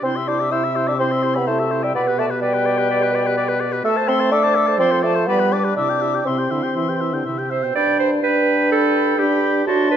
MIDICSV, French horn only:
0, 0, Header, 1, 2, 480
1, 0, Start_track
1, 0, Key_signature, 0, "major"
1, 0, Tempo, 475813
1, 37, Time_signature, 4, 2, 24, 8
1, 4836, Tempo, 492611
1, 7716, Tempo, 479233
1, 9939, End_track
2, 0, Start_track
2, 0, Title_t, "French horn"
2, 0, Program_c, 0, 60
2, 35, Note_on_c, 0, 48, 57
2, 1923, Note_off_c, 0, 48, 0
2, 1970, Note_on_c, 0, 47, 67
2, 3841, Note_off_c, 0, 47, 0
2, 3876, Note_on_c, 0, 57, 75
2, 4838, Note_on_c, 0, 53, 74
2, 4853, Note_off_c, 0, 57, 0
2, 5305, Note_on_c, 0, 55, 62
2, 5320, Note_off_c, 0, 53, 0
2, 5780, Note_off_c, 0, 55, 0
2, 5786, Note_on_c, 0, 48, 45
2, 6211, Note_off_c, 0, 48, 0
2, 6265, Note_on_c, 0, 48, 51
2, 6491, Note_off_c, 0, 48, 0
2, 6513, Note_on_c, 0, 50, 45
2, 6622, Note_off_c, 0, 50, 0
2, 6748, Note_on_c, 0, 52, 58
2, 7125, Note_on_c, 0, 50, 49
2, 7140, Note_off_c, 0, 52, 0
2, 7232, Note_off_c, 0, 50, 0
2, 7238, Note_on_c, 0, 48, 50
2, 7604, Note_on_c, 0, 47, 37
2, 7618, Note_off_c, 0, 48, 0
2, 7709, Note_off_c, 0, 47, 0
2, 7715, Note_on_c, 0, 62, 49
2, 8167, Note_off_c, 0, 62, 0
2, 8194, Note_on_c, 0, 62, 65
2, 9136, Note_off_c, 0, 62, 0
2, 9156, Note_on_c, 0, 62, 64
2, 9623, Note_off_c, 0, 62, 0
2, 9629, Note_on_c, 0, 62, 59
2, 9939, Note_off_c, 0, 62, 0
2, 9939, End_track
0, 0, End_of_file